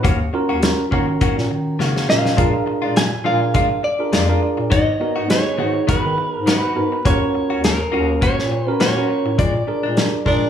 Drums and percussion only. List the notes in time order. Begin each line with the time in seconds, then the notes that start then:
0.05 kick, closed hi-hat
0.63 snare, closed hi-hat
0.92 kick
1.21 kick, closed hi-hat
1.38 snare
1.80 snare
1.96 snare
2.09 snare
2.25 snare
2.38 kick, closed hi-hat
2.96 snare, closed hi-hat
3.54 kick, closed hi-hat
4.13 snare, closed hi-hat
4.72 kick, closed hi-hat
5.30 snare, closed hi-hat
5.89 kick, closed hi-hat
6.47 snare, closed hi-hat
7.05 kick, closed hi-hat
7.64 snare, closed hi-hat
8.22 kick, closed hi-hat
8.39 snare
8.80 snare, closed hi-hat
9.39 kick, closed hi-hat
9.97 snare, closed hi-hat
10.26 kick